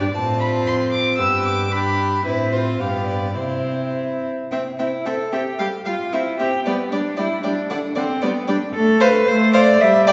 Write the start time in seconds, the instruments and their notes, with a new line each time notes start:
Already playing: violin D5
0.00 cello G2, viola D4, violin G4
0.13 cello A2, viola C4, violin F4 A5
0.40 violin B5
0.67 cello F2, violin C6
0.92 violin D6
1.18 cello G2, viola B3, violin G4 E6
1.45 violin D6
1.72 viola D4, violin G4 B5
2.25 cello A2, viola C4, violin E4 B4
2.52 violin F4 C5
2.80 cello G2, viola B3, violin G4 F5
3.06 violin D5
3.36 cello C3, viola C4, violin E4 C5
4.51 cello C4, viola C4, violin E5 G5
4.79 viola C4, cello E4, violin E5 G5
5.05 viola C4, cello A4, violin E5 G5
5.32 viola C4, cello G4, violin E5 G5
5.59 viola G3, cello G4, violin F5 G5
5.86 viola G3, cello F4, violin F5 G5
6.13 viola C4, cello E4, violin E5 G5
6.39 viola C4, cello G4, violin E5 G5
6.66 viola G3, cello B3, violin D5 G5
6.92 viola G3, cello D4, violin D5 G5
7.17 viola G3, cello E4, violin D5 G5
7.43 viola G3, cello D4, violin D5 G5
7.70 viola D3, cello D4, violin D5 F#5
7.95 viola D3, cello C4, violin D5 F#5
8.22 viola G3, cello B3, violin D5 G5
8.47 viola G3, cello D4, violin D5 G5
8.74 viola A3, cello A4
9.00 cello B4, violin C5 F5
9.27 viola A3, cello C5
9.53 violin C5 F5, cello D5
9.81 viola G3, cello E5
10.07 violin D5 G5, cello D5